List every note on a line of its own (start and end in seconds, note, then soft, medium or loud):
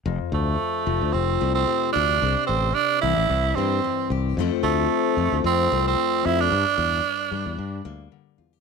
0.06 0.18 F1 medium
0.06 2.22 F2 medium
0.32 0.55 D2 medium
0.32 1.14 A3 medium
0.86 0.99 F1 medium
0.86 2.19 F3 medium
1.02 1.12 D2 medium
1.13 1.37 F1 medium
1.13 1.54 C4 medium
1.41 1.64 C2 medium
1.41 2.19 A3 medium
1.55 1.91 C4 medium
1.67 2.18 C3 medium
1.93 2.18 D2 medium
1.93 2.44 D4 loud
1.93 2.19 A4 medium
2.22 2.34 C2 medium
2.22 3.03 C3 medium
2.47 2.71 A1 loud
2.47 2.76 C4 medium
2.74 3.01 D4 loud
3.01 3.15 C2 medium
3.01 4.35 E3 medium
3.01 3.57 E4 loud
3.17 3.28 A1 medium
3.30 3.52 C2 medium
3.55 3.79 G2 medium
3.55 4.10 C4 medium
3.55 4.35 C4 medium
3.84 4.35 G2 medium
4.10 4.33 C2 medium
4.10 4.35 G4 medium
4.37 4.49 F2 medium
4.37 6.24 F2 medium
4.37 5.17 F3 medium
4.37 5.71 A3 medium
4.37 6.53 C4 medium
4.37 6.50 A4 medium
4.63 4.86 D2 medium
4.63 5.40 A3 medium
5.17 5.29 F2 medium
5.17 6.49 F3 medium
5.32 5.42 D2 medium
5.44 5.67 F2 medium
5.44 5.84 C4 loud
5.72 5.94 C2 medium
5.72 6.49 A3 medium
5.87 6.27 C4 medium
6.25 6.51 F2 medium
6.25 6.47 F2 medium
6.25 6.42 E4 loud
6.41 8.12 D4 loud
6.52 6.64 G2 medium
6.52 8.60 G2 medium
6.78 7.00 E2 medium
7.31 7.44 G2 medium
7.31 8.60 G3 medium
7.46 7.56 E2 medium
7.58 7.80 G2 medium
7.85 8.07 D2 medium
7.85 8.60 A#3 medium
8.12 8.60 D3 medium
8.38 8.60 E2 medium
8.38 8.53 F4 medium
8.53 8.60 G4 medium